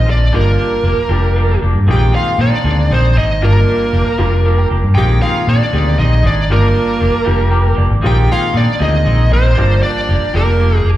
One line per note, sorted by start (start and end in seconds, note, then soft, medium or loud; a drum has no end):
0.00 0.21 D#3 medium
0.00 0.21 G#3 medium
0.00 0.21 A#3 medium
0.00 0.21 C4 medium
0.00 0.21 F4 medium
0.06 0.33 A#1 medium
0.06 0.23 G#3 soft
0.06 0.22 C4 soft
0.06 0.22 F4 medium
0.10 0.33 D4 medium
0.10 0.33 D5 medium
0.32 0.56 G1 medium
0.32 0.48 F3 medium
0.32 0.98 F3 medium
0.32 0.97 G3 medium
0.32 0.48 A#3 medium
0.32 0.97 A#3 medium
0.32 0.48 D4 medium
0.32 0.98 D4 medium
0.32 0.98 F4 medium
0.32 0.48 G4 medium
0.32 1.59 A#4 medium
0.37 1.60 A#3 medium
0.58 0.74 A#3 soft
0.58 0.74 D4 soft
0.58 0.74 G4 medium
0.83 0.95 F1 medium
0.83 1.00 F3 medium
0.83 1.00 A#3 medium
0.83 1.00 D4 medium
0.83 1.00 G4 medium
0.98 muted fingered electric bass stroke soft
1.09 1.55 F1 medium
1.09 1.25 F3 medium
1.09 1.75 F3 medium
1.09 1.75 G3 medium
1.09 1.25 A#3 medium
1.09 1.75 A#3 medium
1.09 1.25 D4 medium
1.09 1.75 D4 medium
1.09 1.25 G4 medium
1.09 1.75 G4 medium
1.35 1.51 F3 medium
1.35 1.51 A#3 medium
1.35 1.52 D4 medium
1.35 1.52 G4 medium
1.62 1.73 F1 medium
1.62 1.78 A#3 soft
1.62 1.78 D4 medium
1.62 1.77 G4 medium
1.75 1.86 G2 medium
1.87 2.10 A#1 medium
1.87 2.52 D#3 medium
1.87 2.03 F3 medium
1.87 2.52 G#3 medium
1.87 2.53 A#3 medium
1.87 2.03 C4 medium
1.87 2.52 C4 medium
1.87 2.03 D#4 medium
1.87 2.52 F4 medium
1.87 2.03 G#4 medium
1.91 2.14 G4 medium
1.91 2.15 G5 medium
2.12 2.29 C4 soft
2.12 2.28 D#4 soft
2.12 2.38 F4 medium
2.12 2.28 G#4 medium
2.12 2.38 F5 medium
2.38 2.50 A#2 medium
2.38 2.54 F3 medium
2.38 2.54 C4 medium
2.38 2.88 D4 medium
2.38 2.54 D#4 medium
2.38 2.55 G#4 medium
2.38 2.93 D5 loud
2.64 2.87 D2 medium
2.64 3.29 D#3 medium
2.64 2.80 F3 medium
2.64 3.29 G#3 medium
2.64 3.29 A#3 medium
2.64 2.80 C4 medium
2.64 3.30 C4 medium
2.64 3.30 D4 medium
2.64 2.80 D#4 medium
2.64 2.80 G#4 medium
2.90 3.13 A#1 medium
2.90 3.06 F3 medium
2.90 3.06 C4 medium
2.90 3.15 C4 medium
2.90 3.06 D#4 medium
2.90 3.06 G#4 medium
2.90 3.16 C5 medium
3.15 3.41 G#1 medium
3.15 3.32 C4 soft
3.15 3.31 D#4 soft
3.15 3.41 D#4 medium
3.15 3.31 G#4 soft
3.15 3.44 D#5 medium
3.41 3.64 G1 medium
3.41 3.57 F3 medium
3.41 4.06 F3 medium
3.41 4.06 G3 medium
3.41 3.57 A#3 medium
3.41 4.06 A#3 medium
3.41 4.67 A#3 medium
3.41 3.57 D4 medium
3.41 4.06 D4 medium
3.41 4.06 F4 medium
3.41 3.57 G4 medium
3.41 4.68 A#4 medium
3.68 3.84 A#3 soft
3.68 3.83 D4 soft
3.68 3.83 G4 soft
3.93 4.04 F1 medium
3.93 4.08 F3 medium
3.93 4.08 A#3 medium
3.93 4.09 D4 medium
3.93 4.09 G4 medium
4.06 muted fingered electric bass stroke soft
4.18 4.64 F1 medium
4.18 4.83 F3 medium
4.18 4.34 F3 medium
4.18 4.83 G3 medium
4.18 4.83 A#3 medium
4.18 4.34 A#3 medium
4.18 4.34 D4 medium
4.18 4.83 D4 medium
4.18 4.83 F4 medium
4.18 4.34 G4 medium
4.44 4.60 F3 medium
4.44 4.60 A#3 medium
4.44 4.60 D4 medium
4.44 4.60 G4 medium
4.44 4.57 F5 medium
4.58 4.70 G5 medium
4.70 4.82 F1 medium
4.70 4.86 A#3 soft
4.70 4.86 D4 soft
4.70 4.86 G4 medium
4.70 4.95 A#5 medium
4.84 4.95 G2 medium
4.95 5.18 A#1 medium
4.95 5.61 D#3 medium
4.95 5.11 F3 medium
4.95 5.61 G#3 medium
4.95 5.61 A#3 medium
4.95 5.11 C4 medium
4.95 5.61 C4 medium
4.95 5.11 D#4 medium
4.95 5.61 F4 medium
4.95 5.21 G4 medium
4.95 5.11 G#4 medium
4.95 5.22 G5 medium
5.22 5.37 C4 soft
5.22 5.37 D#4 soft
5.22 5.46 F4 medium
5.22 5.37 G#4 medium
5.22 5.48 F5 loud
5.47 5.59 A#2 medium
5.47 5.63 F3 medium
5.47 5.63 C4 soft
5.47 5.96 D4 medium
5.47 5.63 D#4 medium
5.47 5.64 G#4 medium
5.47 5.99 D5 medium
5.73 5.96 D2 medium
5.73 6.37 D#3 medium
5.73 5.89 F3 medium
5.73 6.37 G#3 medium
5.73 6.38 A#3 medium
5.73 5.89 C4 medium
5.73 6.38 C4 medium
5.73 5.88 D#4 medium
5.73 6.38 G4 medium
5.73 5.88 G#4 medium
5.98 6.21 A#1 medium
5.98 6.14 F3 medium
5.98 6.14 C4 medium
5.98 6.14 D#4 medium
5.98 6.23 D#4 medium
5.98 6.14 G#4 medium
5.98 6.25 D#5 medium
6.23 6.49 G#1 medium
6.23 6.40 C4 soft
6.23 6.49 D4 medium
6.23 6.39 D#4 soft
6.23 6.39 G#4 medium
6.23 6.52 D5 medium
6.49 6.72 G1 medium
6.49 6.65 F3 medium
6.49 7.14 F3 medium
6.49 7.14 G3 medium
6.49 7.14 A#3 medium
6.49 6.66 A#3 medium
6.49 6.66 D4 medium
6.49 7.14 D4 medium
6.49 7.15 F4 medium
6.49 6.66 G4 medium
6.49 7.75 A#4 medium
6.53 7.76 A#3 medium
6.74 6.91 A#3 soft
6.74 6.90 D4 soft
6.74 6.90 G4 medium
7.00 7.12 F1 medium
7.00 7.16 F3 medium
7.00 7.16 A#3 medium
7.00 7.16 D4 medium
7.00 7.17 G4 medium
7.14 muted fingered electric bass stroke soft
7.24 7.72 F1 medium
7.24 7.41 F3 medium
7.24 7.91 F3 medium
7.24 7.91 G3 medium
7.24 7.41 A#3 medium
7.24 7.91 A#3 medium
7.24 7.41 D4 medium
7.24 7.91 D4 medium
7.24 7.41 G4 medium
7.24 7.91 G4 medium
7.49 7.66 F3 medium
7.49 7.67 A#3 medium
7.49 7.67 D4 medium
7.49 7.67 G4 medium
7.49 7.76 G5 medium
7.75 7.89 F1 medium
7.75 7.92 A#3 soft
7.75 7.92 D4 medium
7.75 7.92 G4 medium
7.75 8.02 D5 medium
7.91 8.02 G#1 medium
8.01 8.26 A#1 loud
8.01 8.68 D#3 medium
8.01 8.18 F3 medium
8.01 8.68 G#3 medium
8.01 8.68 A#3 medium
8.01 8.18 C4 medium
8.01 8.68 C4 medium
8.01 8.18 D#4 medium
8.01 8.68 F4 medium
8.01 8.18 G#4 medium
8.06 8.29 G4 medium
8.06 8.32 G5 medium
8.28 8.44 C4 soft
8.28 8.44 D#4 soft
8.28 8.54 F4 medium
8.28 8.44 G#4 medium
8.33 8.55 F5 loud
8.53 8.66 A#2 medium
8.53 8.69 F3 medium
8.53 8.70 C4 medium
8.53 8.80 D4 medium
8.53 8.70 D#4 medium
8.53 8.70 G#4 medium
8.57 8.82 D5 medium
8.79 9.03 D2 medium
8.79 9.44 D#3 medium
8.79 8.96 F3 medium
8.79 9.44 G#3 medium
8.79 9.45 A#3 medium
8.79 8.95 C4 medium
8.79 9.45 C4 medium
8.79 8.95 D#4 medium
8.79 9.29 D#4 medium
8.79 9.45 F4 medium
8.79 8.95 G#4 medium
8.79 9.33 D#5 medium
9.04 9.29 A#1 medium
9.04 9.21 F3 medium
9.04 9.21 C4 medium
9.04 9.21 D#4 medium
9.04 9.21 G#4 medium
9.30 9.56 A#1 medium
9.30 9.47 C4 soft
9.30 9.80 C4 medium
9.30 9.46 D#4 soft
9.30 9.46 G#4 medium
9.30 9.82 C5 loud
9.55 9.79 G1 loud
9.55 9.72 F3 medium
9.55 10.22 F3 medium
9.55 10.22 G3 medium
9.55 9.72 A#3 medium
9.55 10.22 A#3 medium
9.55 9.72 D4 medium
9.55 10.22 D4 medium
9.55 10.22 F4 medium
9.55 9.72 G4 medium
9.82 9.98 A#3 soft
9.82 9.98 D4 soft
9.82 10.32 D4 medium
9.82 9.98 G4 medium
9.82 10.36 D5 medium
10.08 10.20 F1 medium
10.08 10.24 F3 medium
10.08 10.24 A#3 medium
10.08 10.24 D4 medium
10.08 10.24 G4 medium
10.22 muted fingered electric bass stroke soft
10.34 10.79 F1 medium
10.34 10.97 F3 medium
10.34 10.50 F3 soft
10.34 10.97 G3 medium
10.34 10.97 A#3 medium
10.34 10.50 A#3 medium
10.34 10.77 A#3 medium
10.34 10.49 D4 medium
10.34 10.97 D4 medium
10.34 10.49 G4 medium
10.34 10.97 G4 medium
10.34 10.77 A#4 medium
10.60 10.75 F3 medium
10.60 10.75 A#3 medium
10.60 10.75 D4 medium
10.60 10.76 G4 medium
10.77 10.89 G#3 medium
10.77 10.89 G#4 medium
10.84 10.96 F1 medium
10.84 10.97 A#3 soft
10.84 10.97 D4 soft
10.84 10.97 G4 medium